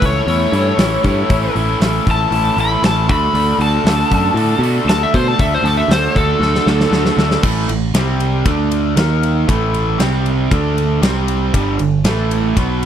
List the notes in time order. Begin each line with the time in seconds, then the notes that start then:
0.00 C#2 A2 E3 A3 C#4 E4 A4, kick, open hi-hat
0.06 C#5
0.27 E2 A2 E3 A3 C#4 E4 A4, open hi-hat
0.52 G2 A2 E3 A3 C#4 E4 A4, open hi-hat
0.77 A1 A2 E3 A3 C#4 E4 A4, snare, open hi-hat
1.03 G2 A2 E3 A3 C#4 E4 A4, kick, open hi-hat
1.29 A1 A2 E3 A3 C#4 E4 A4, kick, open hi-hat
1.54 A1 A2 E3 A3 C#4 E4 A4, open hi-hat
1.79 A1 A2 E3 A3 C#4 E4 A4, snare, open hi-hat
2.06 A1 A2 E3 A3 C#4 E4 A4, kick, open hi-hat
2.11 A5
2.30 A1 A2 E3 A3 C#4 E4 A4, open hi-hat
2.57 A1 A2 E3 A3 C#4 E4 A4, open hi-hat
2.61 B5
2.82 A1 A2 E3 A3 C#4 E4 A4 A5, snare, open hi-hat
3.08 D2 D3 A3 D4 F#4 A4 B5, kick, open hi-hat
3.33 D2 D3 A3 D4 F#4 A4, open hi-hat
3.58 D2 D3 A3 D4 F#4 A4 A5, open hi-hat
3.84 D2 D3 A3 D4 F#4 A4, snare, open hi-hat
4.11 F#2 D3 A3 D4 F#4 A4, kick, open hi-hat
4.34 A2 D3 A3 D4 F#4 A4, open hi-hat
4.59 B2 D3
4.63 A3 D4 F#4 A4, open hi-hat
4.85 D2
4.89 D3 A3 D4 F#4 A4 A5, snare, open hi-hat
5.03 E5
5.14 B2 D3 A3 D4 F#4 A4 C5, kick, open hi-hat
5.28 A5
5.39 D2 D3 A3 D4 F#4 A4 E5, kick, open hi-hat
5.54 C5
5.63 D2 D3 A3 A5, open hi-hat
5.67 D4 F#4 A4
5.77 E5
5.88 D2 D3 A3 D4 F#4 A4 C5, snare, open hi-hat
6.14 D2 D3 A3 D4 F#4 A4, kick, open hi-hat
6.39 D2 D3 A3 D4 F#4 A4, snare
6.55 snare
6.66 D2 D3 A3 D4 F#4 A4, snare
6.80 snare
6.91 D2 D3 A3 D4 F#4 A4, snare
7.05 snare
7.17 D2 D3 A3 D4 F#4 A4, snare
7.31 snare
7.43 A1 A2 E3 A3, kick, crash
7.68 A1 A2 E3, ride
7.94 C2 C3 G3 C4, snare, ride
8.20 ride
8.45 D2 D3 A3 D4, kick, ride
8.72 ride
8.96 D#2 D#3 A#3 D#4, snare, ride
9.23 ride
9.48 A1 A2 E3 A3, kick, ride
9.74 ride
9.99 C2 C3 G3 C4, snare, ride
10.26 ride
10.51 D2 D3 A3 D4, kick, ride
10.78 ride
11.02 C2 C3 G3 C4, snare, ride
11.28 ride
11.53 G1 G2 D3 G3, kick, ride
11.79 G1 G2 D3, ride
12.04 A1 A2 E3 A3, snare, ride
12.31 ride
12.56 B1 B2 F#3 B3, kick, ride